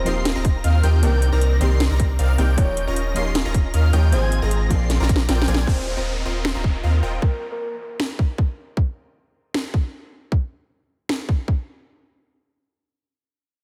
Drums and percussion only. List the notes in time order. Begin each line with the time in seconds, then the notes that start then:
0.06 closed hi-hat
0.25 snare, closed hi-hat
0.45 kick, closed hi-hat
0.64 closed hi-hat
0.83 closed hi-hat
1.03 closed hi-hat
1.22 closed hi-hat
1.41 closed hi-hat
1.61 closed hi-hat
1.80 snare, closed hi-hat
2.00 kick, closed hi-hat
2.19 closed hi-hat
2.38 closed hi-hat
2.58 kick, closed hi-hat
2.77 closed hi-hat
2.96 closed hi-hat
3.16 closed hi-hat
3.35 snare, closed hi-hat
3.54 kick, closed hi-hat
3.74 closed hi-hat
3.93 closed hi-hat
4.12 closed hi-hat
4.32 closed hi-hat
4.51 closed hi-hat
4.71 kick, closed hi-hat
4.90 snare, closed hi-hat
5.03 snare
5.09 kick, closed hi-hat
5.16 snare
5.29 snare, closed hi-hat
5.42 snare
5.48 closed hi-hat
5.54 snare
5.67 kick
6.45 finger snap, snare
6.64 kick
7.22 kick
8.00 finger snap, snare
8.19 kick
8.38 kick
8.77 kick
9.54 finger snap, snare
9.74 kick
10.32 kick
11.09 finger snap, snare
11.29 kick
11.48 kick